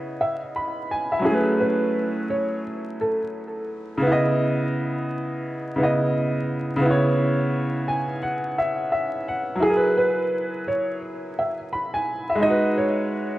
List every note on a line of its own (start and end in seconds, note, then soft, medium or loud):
0.00 1.18 C#3 medium
0.00 1.20 B3 medium
0.00 1.22 E4 medium
0.00 0.58 D#5 medium
0.21 0.40 E5 medium
0.56 0.88 B5 medium
0.91 1.11 G#5 medium
1.12 1.45 E5 medium
1.19 3.97 F#3 medium
1.19 3.98 C#4 medium
1.25 4.00 E4 medium
1.25 1.56 G#4 medium
1.25 4.01 G#4 medium
1.30 4.03 A3 medium
1.30 4.04 B4 medium
1.60 2.26 B4 medium
2.30 2.61 C#5 medium
3.01 3.20 A4 medium
3.98 5.71 C#3 medium
4.02 5.74 B3 medium
4.07 5.76 E4 medium
4.12 5.79 D#5 medium
5.76 6.75 C#3 medium
5.76 6.80 B3 medium
5.80 6.84 E4 soft
5.80 6.85 D#5 medium
6.76 9.55 C#3 medium
6.81 9.57 B3 medium
6.86 9.59 E4 medium
6.91 9.62 C#5 medium
7.88 8.20 G#5 medium
8.22 8.55 F#5 medium
8.58 8.90 E5 medium
8.92 9.24 E5 medium
9.28 9.60 F#5 medium
9.55 11.64 F#3 medium
9.60 11.66 E4 medium
9.60 9.93 G#4 loud
9.65 11.69 G#4 medium
9.70 9.74 A#4 medium
9.76 11.74 B4 medium
9.97 10.63 B4 medium
10.68 10.99 C#5 medium
11.39 11.57 E5 medium
11.73 11.93 B5 medium
11.94 12.27 G#5 medium
12.30 12.62 E5 medium
12.35 13.39 G#3 medium
12.40 13.39 D#4 medium
12.40 12.73 D#5 loud
12.45 13.39 F#4 medium
12.50 13.39 B4 medium
12.78 13.39 C#5 medium